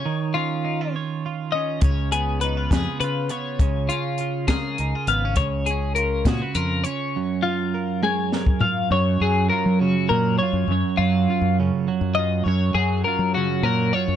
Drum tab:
HH |------------|x-x-x-x-x-x-|x-x-x-x-x-x-|x-x-x-x-x-x-|
SD |------------|------o-----|------o-----|------o-----|
T1 |------------|------------|------------|------------|
FT |------------|------------|------------|------------|
BD |------------|o-----o-----|o-----o-----|o-----o-----|

HH |------------|------------|------------|------------|
SD |--------o---|------------|------------|------------|
T1 |------o-----|------------|------------|------------|
FT |----------o-|------------|------------|------------|
BD |---------o--|------------|------------|------------|